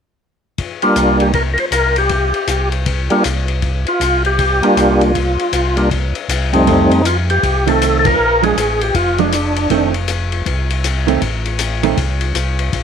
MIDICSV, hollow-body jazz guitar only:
0, 0, Header, 1, 2, 480
1, 0, Start_track
1, 0, Tempo, 379747
1, 738, Time_signature, 4, 2, 24, 8
1, 16218, End_track
2, 0, Start_track
2, 0, Title_t, "Hollow-body jazz guitar"
2, 0, Program_c, 0, 26
2, 8435, Note_on_c, 0, 51, 48
2, 8443, Note_on_c, 0, 57, 53
2, 8451, Note_on_c, 0, 60, 51
2, 8705, Note_off_c, 0, 51, 0
2, 8708, Note_off_c, 0, 57, 0
2, 8712, Note_off_c, 0, 60, 0
2, 9693, Note_on_c, 0, 51, 54
2, 9702, Note_on_c, 0, 57, 52
2, 9706, Note_on_c, 0, 60, 59
2, 10311, Note_off_c, 0, 51, 0
2, 10315, Note_off_c, 0, 57, 0
2, 10317, Note_off_c, 0, 60, 0
2, 10647, Note_on_c, 0, 53, 41
2, 10662, Note_on_c, 0, 56, 45
2, 10664, Note_on_c, 0, 62, 54
2, 10805, Note_off_c, 0, 53, 0
2, 10813, Note_off_c, 0, 56, 0
2, 10814, Note_off_c, 0, 62, 0
2, 11615, Note_on_c, 0, 53, 51
2, 11624, Note_on_c, 0, 56, 48
2, 11632, Note_on_c, 0, 62, 55
2, 11769, Note_off_c, 0, 53, 0
2, 11773, Note_off_c, 0, 56, 0
2, 11777, Note_off_c, 0, 62, 0
2, 12270, Note_on_c, 0, 51, 56
2, 12276, Note_on_c, 0, 57, 50
2, 12282, Note_on_c, 0, 60, 59
2, 12539, Note_off_c, 0, 51, 0
2, 12542, Note_off_c, 0, 57, 0
2, 12545, Note_off_c, 0, 60, 0
2, 13993, Note_on_c, 0, 51, 54
2, 14006, Note_on_c, 0, 57, 61
2, 14013, Note_on_c, 0, 60, 64
2, 14155, Note_off_c, 0, 51, 0
2, 14162, Note_off_c, 0, 57, 0
2, 14166, Note_off_c, 0, 60, 0
2, 14957, Note_on_c, 0, 51, 54
2, 14966, Note_on_c, 0, 57, 56
2, 14973, Note_on_c, 0, 60, 62
2, 15117, Note_off_c, 0, 51, 0
2, 15121, Note_off_c, 0, 57, 0
2, 15124, Note_off_c, 0, 60, 0
2, 16218, End_track
0, 0, End_of_file